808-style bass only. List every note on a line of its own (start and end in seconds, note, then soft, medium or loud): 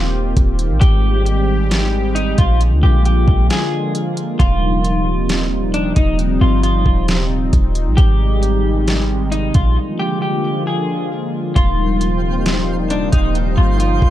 0.00 0.34 D#1 loud
0.37 0.72 D#1 loud
0.70 0.81 A#1 loud
0.82 2.34 G#1 loud
2.38 2.73 A#1 loud
2.72 2.82 D2 loud
2.83 3.26 A#1 loud
3.28 3.49 A#1 loud
4.40 5.92 D#1 loud
5.97 6.39 D#1 loud
6.41 6.84 G1 loud
6.86 7.50 D#1 loud
7.53 7.88 D#1 loud
7.87 7.97 A#1 loud
7.98 9.51 G#1 loud
9.55 9.77 A#1 loud
11.56 13.09 D#1 loud
13.13 13.56 D#1 loud
13.58 14.01 G1 loud
14.02 14.10 D#1 loud